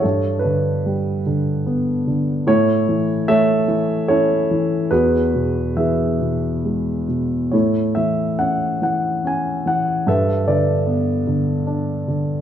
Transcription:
<<
  \new Staff \with { instrumentName = "Grand piano" } { \time 3/4 \key a \major \tempo 4 = 73 << { cis''8 b'4 r4. | cis''4 e''4 cis''4 | b'4 e''4. r8 | cis''8 e''8 fis''8 fis''8 gis''8 fis''8 |
e''8 d''4 r4. | } \\ { a'8 d'4. r4 | <e' a'>4 <a' cis''>4 <e' a'>4 | <fis' gis'>4 <gis' b'>4. r8 | <e' a'>4. r4. |
<a' b'>8 <a' b'>4. r4 | } >> }
  \new Staff \with { instrumentName = "Grand piano" } { \clef bass \time 3/4 \key a \major g,8 d8 g8 d8 b8 d8 | a,8 e8 a8 e8 cis'8 e8 | e,8 b,8 e8 b,8 gis8 b,8 | a,8 e8 cis'8 e8 cis'8 e8 |
g,8 d8 b8 d8 d'8 d8 | }
>>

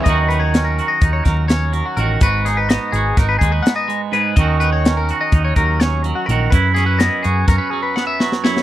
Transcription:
<<
  \new Staff \with { instrumentName = "Clean electric guitar" } { \time 9/8 \key dis \phrygian \tempo 4. = 83 dis''8 b'16 cis''8 ais'8 dis''8 cis''16 ais'8 cis''8 ais'16 fis'16 ais'8 | b'8 gis'16 b'16 dis''8 gis'8 ais'16 b'16 gis'16 b'16 fis''16 dis''8 r16 b'8 | dis''8 b'16 cis''8 ais'8 dis''8 cis''16 ais'8 cis''8 ais'16 fis'16 ais'8 | b'8 gis'16 b'16 dis''8 gis'8 ais'16 b'16 gis'16 b'16 fis''16 e''8 r16 cis''8 | }
  \new Staff \with { instrumentName = "Clean electric guitar" } { \time 9/8 \key dis \phrygian << { <fis cis' dis' fis'>8 dis'8 cis'8 fis'8 dis'4 cis'4 fis'8 | fis'8 dis'8 b8 fis'8 dis'4 b4 gis'8 | <fis cis' dis' fis'>8 dis'8 cis'8 fis'8 dis'4 cis'4 fis'8 | e'8 cis'8 b8 fis'8 cis'4 b4 e'8 | } \\ { dis2~ dis8 fis4 fis8 dis8 | gis,2~ gis,8 gis4 gis8 gis,8 | dis2~ dis8 fis4 fis8 dis8 | fis,2~ fis,8 fis4 fis8 fis,8 | } >> }
  \new Staff \with { instrumentName = "Picked electric bass" } { \clef bass \time 9/8 \key dis \phrygian dis,2 dis,8 dis,4. a,,8 | gis,,4. gis,,8 gis,,8 dis,8 r4. | dis,2 dis,8 dis,4. ais,,8 | fis,4. fis,8 fis,16 r2 r16 | }
  \new DrumStaff \with { instrumentName = "Drums" } \drummode { \time 9/8 <hh bd>8 hh8 <hh sn>8 hh8 <hh bd>8 <hh bd sn>8 <hh sn>8 hh8 hh8 | <hh bd>8 <hh sn>8 <hh sn>8 hh8 <hh bd sn>8 <hh bd>8 <hh sn>8 hh8 hh8 | <hh bd>8 hh8 <hh sn>8 hh8 <hh bd>8 <hh bd>8 <hh sn>8 hh8 hh8 | <hh bd>8 <hh sn>8 <hh sn>8 hh8 <hh bd sn>4 sn8 sn16 sn16 sn16 sn16 | }
>>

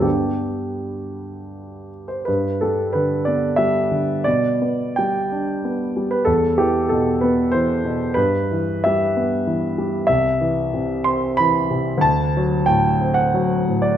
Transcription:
<<
  \new Staff \with { instrumentName = "Grand piano" } { \time 3/4 \key g \major \tempo 4 = 92 g'2~ g'8 r16 c''16 | b'8 a'8 b'8 d''8 e''4 | d''4 g''4~ g''16 r8 b'16 | a'8 g'8 a'8 b'8 c''4 |
b'4 e''4~ e''16 r8. | e''4. c'''8 b''4 | a''4 g''8. fis''8. r16 d''16 | }
  \new Staff \with { instrumentName = "Grand piano" } { \clef bass \time 3/4 \key g \major <g, g b d'>2. | g,8 g8 d8 b8 g8 d8 | b,8 b8 g8 d'8 b8 g8 | e,8 e8 b,8 b8 e8 b,8 |
g,8 e8 g8 b8 e8 g8 | c,8 e8 c8 c'8 e8 c8 | d,8 fis8 a,8 c'8 fis8 a,8 | }
>>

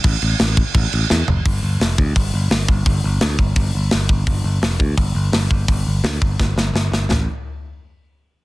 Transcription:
<<
  \new Staff \with { instrumentName = "Picked electric bass" } { \clef bass \time 4/4 \key g \mixolydian \tempo 4 = 170 a,,8 a,,8 a,,4 a,,8 a,,8 e,8 fis,,8 | g,,8 g,,8 f,,8 d,8 g,,8 g,,8 g,,8 g,,8 | g,,8 g,,8 d,8 g,,8 g,,8 g,,8 g,,8 g,,8 | r8 g,,8 f,,8 d,8 g,,8 g,,8 g,,8 g,,8 |
g,,8 g,,8 d,8 g,,8 g,,8 g,,8 g,,8 g,,8 | a,,8 r2. r8 | }
  \new DrumStaff \with { instrumentName = "Drums" } \drummode { \time 4/4 <cymc bd>8 cymc8 <cymc sn>8 <cymc bd>8 <cymc bd>8 cymc8 sn8 tomfh8 | <hho bd>4 <hho sn>8 bd8 <hho bd>4 <hho sn>8 bd8 | <hho bd>4 <hho sn>8 bd8 <hho bd>4 <hho sn>8 bd8 | <hho bd>4 <hho sn>8 bd8 <hho bd>4 <hho sn>8 bd8 |
<hho bd>4 <hho sn>8 bd8 <bd sn>8 sn8 sn8 sn8 | <sn tomfh>4 r4 r4 r4 | }
>>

